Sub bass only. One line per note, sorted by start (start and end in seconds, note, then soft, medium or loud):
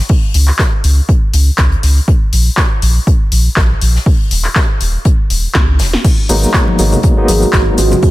0.34 0.51 C#2 medium
0.84 1.01 C#2 loud
1.33 1.50 C#2 loud
1.58 1.75 C#2 medium
1.83 2.00 C#2 loud
2.33 2.49 A#1 loud
2.82 2.99 A#1 loud
3.32 3.48 A#1 loud
3.57 3.73 A#1 medium
3.81 3.98 A#1 loud
4.31 4.48 D#1 loud
4.81 4.97 D#1 loud
5.30 5.47 D#1 medium
5.55 5.81 C#2 loud
5.80 5.96 D#1 medium
6.29 6.46 G#1 loud
6.79 6.95 G#1 loud
7.28 7.45 G#1 loud
7.53 7.70 G#1 medium
7.78 7.95 G#1 medium